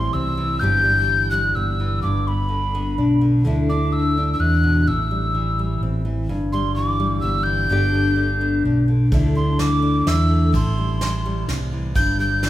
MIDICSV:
0, 0, Header, 1, 5, 480
1, 0, Start_track
1, 0, Key_signature, 1, "major"
1, 0, Tempo, 472441
1, 629, Time_signature, 3, 2, 24, 8
1, 12696, End_track
2, 0, Start_track
2, 0, Title_t, "Tin whistle"
2, 0, Program_c, 0, 75
2, 0, Note_on_c, 0, 84, 84
2, 136, Note_on_c, 0, 88, 80
2, 151, Note_off_c, 0, 84, 0
2, 606, Note_on_c, 0, 91, 96
2, 621, Note_off_c, 0, 88, 0
2, 1320, Note_off_c, 0, 91, 0
2, 1326, Note_on_c, 0, 90, 84
2, 1578, Note_on_c, 0, 88, 73
2, 1594, Note_off_c, 0, 90, 0
2, 2054, Note_off_c, 0, 88, 0
2, 2060, Note_on_c, 0, 86, 75
2, 2312, Note_on_c, 0, 83, 70
2, 2327, Note_off_c, 0, 86, 0
2, 3270, Note_off_c, 0, 83, 0
2, 3753, Note_on_c, 0, 86, 71
2, 3988, Note_on_c, 0, 88, 82
2, 4003, Note_off_c, 0, 86, 0
2, 4396, Note_off_c, 0, 88, 0
2, 4402, Note_on_c, 0, 88, 65
2, 4472, Note_on_c, 0, 90, 93
2, 4487, Note_off_c, 0, 88, 0
2, 4955, Note_on_c, 0, 88, 75
2, 4970, Note_off_c, 0, 90, 0
2, 5910, Note_off_c, 0, 88, 0
2, 6630, Note_on_c, 0, 84, 67
2, 6850, Note_off_c, 0, 84, 0
2, 6865, Note_on_c, 0, 86, 79
2, 7311, Note_off_c, 0, 86, 0
2, 7320, Note_on_c, 0, 88, 86
2, 7553, Note_on_c, 0, 91, 108
2, 7568, Note_off_c, 0, 88, 0
2, 8768, Note_off_c, 0, 91, 0
2, 9516, Note_on_c, 0, 84, 72
2, 9751, Note_on_c, 0, 86, 84
2, 9767, Note_off_c, 0, 84, 0
2, 10243, Note_on_c, 0, 88, 80
2, 10258, Note_off_c, 0, 86, 0
2, 10714, Note_off_c, 0, 88, 0
2, 10724, Note_on_c, 0, 84, 69
2, 11635, Note_off_c, 0, 84, 0
2, 12151, Note_on_c, 0, 91, 98
2, 12373, Note_off_c, 0, 91, 0
2, 12397, Note_on_c, 0, 91, 95
2, 12696, Note_off_c, 0, 91, 0
2, 12696, End_track
3, 0, Start_track
3, 0, Title_t, "Nylon-string guitar"
3, 0, Program_c, 1, 24
3, 0, Note_on_c, 1, 45, 70
3, 0, Note_on_c, 1, 52, 51
3, 0, Note_on_c, 1, 55, 49
3, 0, Note_on_c, 1, 60, 58
3, 0, Note_on_c, 1, 67, 61
3, 134, Note_off_c, 1, 60, 0
3, 146, Note_on_c, 1, 60, 52
3, 368, Note_off_c, 1, 52, 0
3, 380, Note_on_c, 1, 52, 54
3, 596, Note_off_c, 1, 52, 0
3, 599, Note_off_c, 1, 60, 0
3, 616, Note_on_c, 1, 43, 70
3, 622, Note_off_c, 1, 45, 0
3, 625, Note_off_c, 1, 55, 0
3, 625, Note_on_c, 1, 52, 61
3, 629, Note_on_c, 1, 55, 58
3, 640, Note_on_c, 1, 59, 55
3, 641, Note_off_c, 1, 67, 0
3, 645, Note_on_c, 1, 67, 60
3, 859, Note_off_c, 1, 55, 0
3, 863, Note_on_c, 1, 55, 50
3, 1091, Note_off_c, 1, 52, 0
3, 1103, Note_on_c, 1, 52, 51
3, 1343, Note_off_c, 1, 55, 0
3, 1348, Note_on_c, 1, 55, 52
3, 1576, Note_off_c, 1, 59, 0
3, 1588, Note_on_c, 1, 59, 47
3, 1814, Note_off_c, 1, 52, 0
3, 1826, Note_on_c, 1, 52, 56
3, 2034, Note_off_c, 1, 43, 0
3, 2039, Note_off_c, 1, 52, 0
3, 2048, Note_off_c, 1, 67, 0
3, 2059, Note_on_c, 1, 43, 64
3, 2301, Note_off_c, 1, 59, 0
3, 2308, Note_off_c, 1, 55, 0
3, 2313, Note_on_c, 1, 59, 51
3, 2527, Note_on_c, 1, 50, 48
3, 2779, Note_off_c, 1, 59, 0
3, 2791, Note_on_c, 1, 59, 54
3, 3029, Note_on_c, 1, 62, 54
3, 3252, Note_off_c, 1, 50, 0
3, 3264, Note_on_c, 1, 50, 59
3, 3474, Note_off_c, 1, 43, 0
3, 3479, Note_off_c, 1, 62, 0
3, 3481, Note_off_c, 1, 59, 0
3, 3489, Note_off_c, 1, 50, 0
3, 3502, Note_on_c, 1, 50, 70
3, 3511, Note_on_c, 1, 57, 55
3, 3518, Note_on_c, 1, 62, 56
3, 3527, Note_on_c, 1, 64, 58
3, 3744, Note_off_c, 1, 62, 0
3, 3756, Note_on_c, 1, 62, 49
3, 3983, Note_off_c, 1, 57, 0
3, 3987, Note_on_c, 1, 57, 48
3, 4232, Note_off_c, 1, 62, 0
3, 4242, Note_on_c, 1, 62, 53
3, 4464, Note_on_c, 1, 48, 53
3, 4706, Note_off_c, 1, 48, 0
3, 4711, Note_on_c, 1, 47, 57
3, 4918, Note_off_c, 1, 57, 0
3, 4925, Note_off_c, 1, 62, 0
3, 4943, Note_off_c, 1, 50, 0
3, 4945, Note_off_c, 1, 47, 0
3, 4949, Note_on_c, 1, 45, 68
3, 5192, Note_on_c, 1, 55, 48
3, 5431, Note_on_c, 1, 52, 52
3, 5676, Note_off_c, 1, 55, 0
3, 5680, Note_on_c, 1, 55, 52
3, 5919, Note_on_c, 1, 60, 55
3, 6134, Note_off_c, 1, 52, 0
3, 6146, Note_on_c, 1, 52, 51
3, 6357, Note_off_c, 1, 52, 0
3, 6363, Note_off_c, 1, 60, 0
3, 6386, Note_off_c, 1, 45, 0
3, 6393, Note_on_c, 1, 43, 71
3, 6394, Note_off_c, 1, 64, 0
3, 6635, Note_off_c, 1, 55, 0
3, 6639, Note_on_c, 1, 55, 54
3, 6872, Note_on_c, 1, 52, 52
3, 7105, Note_off_c, 1, 55, 0
3, 7109, Note_on_c, 1, 55, 56
3, 7340, Note_on_c, 1, 59, 53
3, 7562, Note_off_c, 1, 52, 0
3, 7574, Note_on_c, 1, 52, 56
3, 7790, Note_off_c, 1, 52, 0
3, 7799, Note_off_c, 1, 43, 0
3, 7817, Note_off_c, 1, 59, 0
3, 7817, Note_on_c, 1, 43, 73
3, 7823, Note_on_c, 1, 50, 59
3, 7825, Note_off_c, 1, 55, 0
3, 7829, Note_on_c, 1, 59, 59
3, 7840, Note_on_c, 1, 62, 57
3, 7845, Note_on_c, 1, 67, 66
3, 8057, Note_off_c, 1, 59, 0
3, 8069, Note_on_c, 1, 59, 49
3, 8277, Note_off_c, 1, 50, 0
3, 8290, Note_on_c, 1, 50, 55
3, 8532, Note_off_c, 1, 59, 0
3, 8544, Note_on_c, 1, 59, 52
3, 8780, Note_off_c, 1, 62, 0
3, 8792, Note_on_c, 1, 62, 51
3, 9010, Note_off_c, 1, 50, 0
3, 9022, Note_on_c, 1, 50, 54
3, 9232, Note_off_c, 1, 43, 0
3, 9236, Note_off_c, 1, 59, 0
3, 9239, Note_off_c, 1, 62, 0
3, 9246, Note_off_c, 1, 67, 0
3, 9250, Note_off_c, 1, 50, 0
3, 9262, Note_on_c, 1, 50, 62
3, 9269, Note_on_c, 1, 57, 50
3, 9280, Note_on_c, 1, 62, 58
3, 9285, Note_on_c, 1, 64, 64
3, 9491, Note_off_c, 1, 62, 0
3, 9503, Note_on_c, 1, 62, 48
3, 9735, Note_off_c, 1, 57, 0
3, 9739, Note_on_c, 1, 57, 48
3, 9969, Note_off_c, 1, 62, 0
3, 9981, Note_on_c, 1, 62, 55
3, 10224, Note_off_c, 1, 64, 0
3, 10228, Note_on_c, 1, 64, 52
3, 10441, Note_off_c, 1, 57, 0
3, 10453, Note_on_c, 1, 57, 59
3, 10670, Note_off_c, 1, 57, 0
3, 10675, Note_off_c, 1, 62, 0
3, 10693, Note_on_c, 1, 45, 66
3, 10704, Note_off_c, 1, 50, 0
3, 10953, Note_on_c, 1, 55, 49
3, 11191, Note_on_c, 1, 52, 51
3, 11432, Note_off_c, 1, 55, 0
3, 11436, Note_on_c, 1, 55, 55
3, 11673, Note_on_c, 1, 60, 46
3, 11900, Note_off_c, 1, 52, 0
3, 11912, Note_on_c, 1, 52, 57
3, 12121, Note_off_c, 1, 52, 0
3, 12122, Note_off_c, 1, 60, 0
3, 12139, Note_on_c, 1, 43, 67
3, 12141, Note_off_c, 1, 45, 0
3, 12149, Note_off_c, 1, 64, 0
3, 12383, Note_off_c, 1, 55, 0
3, 12387, Note_on_c, 1, 55, 50
3, 12625, Note_on_c, 1, 52, 55
3, 12696, Note_off_c, 1, 43, 0
3, 12696, Note_off_c, 1, 52, 0
3, 12696, Note_off_c, 1, 55, 0
3, 12696, End_track
4, 0, Start_track
4, 0, Title_t, "Fingered electric bass"
4, 0, Program_c, 2, 33
4, 0, Note_on_c, 2, 33, 79
4, 106, Note_off_c, 2, 33, 0
4, 143, Note_on_c, 2, 36, 67
4, 602, Note_off_c, 2, 36, 0
4, 628, Note_on_c, 2, 31, 81
4, 1548, Note_off_c, 2, 31, 0
4, 1584, Note_on_c, 2, 31, 76
4, 2042, Note_off_c, 2, 31, 0
4, 2069, Note_on_c, 2, 31, 78
4, 2988, Note_off_c, 2, 31, 0
4, 3023, Note_on_c, 2, 35, 66
4, 3482, Note_off_c, 2, 35, 0
4, 3505, Note_on_c, 2, 38, 77
4, 4425, Note_off_c, 2, 38, 0
4, 4461, Note_on_c, 2, 40, 70
4, 4919, Note_off_c, 2, 40, 0
4, 4948, Note_on_c, 2, 33, 78
4, 5866, Note_off_c, 2, 33, 0
4, 5902, Note_on_c, 2, 33, 78
4, 6359, Note_off_c, 2, 33, 0
4, 6387, Note_on_c, 2, 31, 77
4, 7305, Note_off_c, 2, 31, 0
4, 7346, Note_on_c, 2, 31, 81
4, 7801, Note_off_c, 2, 31, 0
4, 7817, Note_on_c, 2, 31, 75
4, 8740, Note_off_c, 2, 31, 0
4, 8781, Note_on_c, 2, 35, 68
4, 9239, Note_off_c, 2, 35, 0
4, 9263, Note_on_c, 2, 38, 70
4, 10184, Note_off_c, 2, 38, 0
4, 10223, Note_on_c, 2, 40, 66
4, 10681, Note_off_c, 2, 40, 0
4, 10707, Note_on_c, 2, 33, 79
4, 11627, Note_off_c, 2, 33, 0
4, 11666, Note_on_c, 2, 36, 75
4, 12123, Note_off_c, 2, 36, 0
4, 12147, Note_on_c, 2, 31, 77
4, 12696, Note_off_c, 2, 31, 0
4, 12696, End_track
5, 0, Start_track
5, 0, Title_t, "Drums"
5, 9265, Note_on_c, 9, 36, 79
5, 9266, Note_on_c, 9, 51, 40
5, 9367, Note_off_c, 9, 36, 0
5, 9368, Note_off_c, 9, 51, 0
5, 9744, Note_on_c, 9, 38, 57
5, 9744, Note_on_c, 9, 51, 42
5, 9846, Note_off_c, 9, 38, 0
5, 9846, Note_off_c, 9, 51, 0
5, 10230, Note_on_c, 9, 38, 57
5, 10230, Note_on_c, 9, 51, 42
5, 10331, Note_off_c, 9, 38, 0
5, 10331, Note_off_c, 9, 51, 0
5, 10708, Note_on_c, 9, 36, 68
5, 10711, Note_on_c, 9, 51, 40
5, 10810, Note_off_c, 9, 36, 0
5, 10812, Note_off_c, 9, 51, 0
5, 11186, Note_on_c, 9, 38, 64
5, 11186, Note_on_c, 9, 51, 40
5, 11288, Note_off_c, 9, 38, 0
5, 11288, Note_off_c, 9, 51, 0
5, 11669, Note_on_c, 9, 38, 55
5, 11669, Note_on_c, 9, 51, 41
5, 11770, Note_off_c, 9, 38, 0
5, 11770, Note_off_c, 9, 51, 0
5, 12145, Note_on_c, 9, 51, 45
5, 12147, Note_on_c, 9, 36, 76
5, 12247, Note_off_c, 9, 51, 0
5, 12248, Note_off_c, 9, 36, 0
5, 12627, Note_on_c, 9, 38, 56
5, 12627, Note_on_c, 9, 51, 44
5, 12696, Note_off_c, 9, 38, 0
5, 12696, Note_off_c, 9, 51, 0
5, 12696, End_track
0, 0, End_of_file